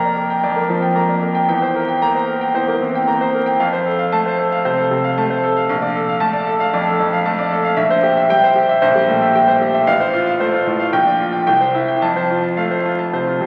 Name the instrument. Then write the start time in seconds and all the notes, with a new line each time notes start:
grand piano
Already playing: F2 A#3 A#4 D5 G5 A#5
0.04 D5
0.16 A#4
0.30 G5
0.43 F2 D5
0.56 A#3 A#4
0.69 F3 C4
0.82 G5
0.95 A#3 A#5
1.09 D5
1.22 A#4
1.35 G5
1.48 E2 G5
1.62 C5
1.75 A#4
1.88 G5
2.02 A#3 A#5
2.15 C5
2.28 A#4
2.41 G5
2.55 E2 C5
2.68 A#3 A#4
2.81 E3 C4
2.95 G5
3.08 A#3 A#5
3.21 C5
3.34 A#4
3.46 G5
3.60 F2 F5
3.73 C5
3.86 A4
3.99 F5
4.12 A3 A5
4.26 C5
4.39 A4
4.52 F5
4.65 C3 C5
4.78 A4
4.91 C3
5.04 F5
5.18 A3 A5
5.30 C5
5.43 A4
5.56 F5
5.69 A#1 F5
5.82 D5
5.95 A4
6.09 F5
6.20 A3 A5
6.33 D5
6.47 A4
6.60 F5
6.73 F2 D5
6.87 A4
6.99 F2
7.13 F5
7.25 A3 A5
7.39 D5
7.52 A4
7.64 F5
7.77 A#1 E5
7.90 C5
8.03 G4
8.17 E5
8.30 G3 G5
8.44 C5
8.56 G4
8.69 E5
8.82 A#1 C5
8.95 G3 G4
9.08 A#2 A3
9.22 E5
9.35 G3 G5
9.48 C5
9.61 G4
9.74 E5
9.87 A1 F5
10.00 C5
10.14 F4
10.26 F5
10.40 A3 C5
10.54 F4
10.67 A2
10.80 F5
10.93 A#1 G5
11.06 D5
11.20 F4
11.33 G5
11.47 C2 G5
11.61 C5
11.74 E4
11.88 G5
12.02 F2 A5
12.16 C5
12.30 F4
12.44 A5
12.57 A3 F5
12.71 C5
12.85 F4
12.99 A5
13.13 C3 C5
13.27 F4
13.41 C3